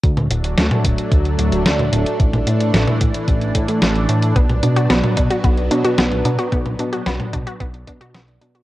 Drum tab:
HH |xxxxxxxxxxxxxxxx|xxxxxxxxxxxxxxxx|xxxxxxxxxxxxxxxx|xxxxxxxxxxxxxxxx|
SD |----o-------o---|----o-------o---|----o-------o---|----o-------o---|
T2 |-o---o-------o--|-o---o----------|-o---o-------o--|-o---o----------|
BD |o-----o-o-------|o-----o-o-o-----|o-----o-o-------|o-----o-o-o-----|